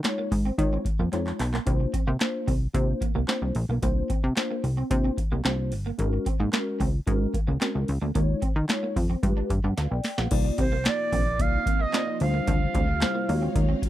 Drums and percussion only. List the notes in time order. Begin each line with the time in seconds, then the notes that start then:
0.04 snare, clap, closed hi-hat
0.31 kick, open hi-hat
0.58 kick, closed hi-hat
0.85 kick, closed hi-hat
1.13 clap, closed hi-hat
1.27 clap
1.39 clap, open hi-hat
1.54 clap
1.67 kick, closed hi-hat
1.94 kick, closed hi-hat
2.20 snare, clap, closed hi-hat
2.48 kick, open hi-hat
2.74 kick, closed hi-hat
3.01 kick, closed hi-hat
3.28 snare, clap, closed hi-hat
3.55 open hi-hat
3.83 kick, closed hi-hat
4.10 kick, closed hi-hat
4.36 snare, clap, closed hi-hat
4.64 open hi-hat
4.91 kick, closed hi-hat
5.18 kick, closed hi-hat
5.45 snare, clap, closed hi-hat
5.72 open hi-hat
5.99 kick, closed hi-hat
6.26 kick, closed hi-hat
6.53 snare, clap, closed hi-hat
6.80 kick, open hi-hat
7.07 kick, closed hi-hat
7.34 kick, closed hi-hat
7.61 snare, clap, closed hi-hat
7.88 open hi-hat
8.15 kick, closed hi-hat
8.42 kick, closed hi-hat
8.69 snare, clap, closed hi-hat
8.96 kick, open hi-hat
9.23 kick, closed hi-hat
9.50 kick, closed hi-hat
9.77 snare, closed hi-hat
10.04 snare, open hi-hat
10.18 snare
10.31 kick, closed hi-hat, crash
10.58 kick, closed hi-hat
10.85 snare, clap, closed hi-hat
11.12 kick, open hi-hat
11.39 kick, closed hi-hat
11.66 kick, closed hi-hat
11.93 snare, clap, closed hi-hat
12.20 open hi-hat
12.47 kick, closed hi-hat
12.75 kick, closed hi-hat
13.01 snare, clap, closed hi-hat
13.29 open hi-hat
13.55 kick, closed hi-hat
13.82 kick, closed hi-hat